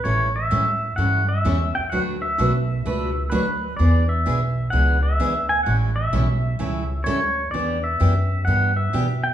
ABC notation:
X:1
M:4/4
L:1/8
Q:"Swing" 1/4=128
K:Amix
V:1 name="Pedal steel guitar"
c e3 f e2 g | f e4- e B2 | d e3 f e2 ^g | f e4- e c2 |
d e3 f e2 g |]
V:2 name="Steel-string acoustic guitar"
[E,G,CEA] z [E,G,CEA] z [E,G,CEA] z [E,G,CEA] z | [D,F,A,DFB] z [D,F,A,DFB] z [D,F,A,DFB] z [D,F,A,DFB] z | [E,B,D^G] z [E,B,DG] z [E,B,DG] z [E,B,DG] z | [E,G,CEA] z [E,G,CEA] z [E,G,CEA] z [E,G,CEA] z |
[E,B,DG] z [E,B,DG] z [E,B,DG] z [E,B,DG] z |]
V:3 name="Upright bass" clef=bass
A,,,2 A,,2 G,,2 E,, z | D,,2 B,,,2 C,,2 D,,2 | E,,2 B,,,2 C,,2 D,,2 | A,,,2 B,,,2 C,,2 D,,2 |
E,,2 F,,2 G,,2 B,,2 |]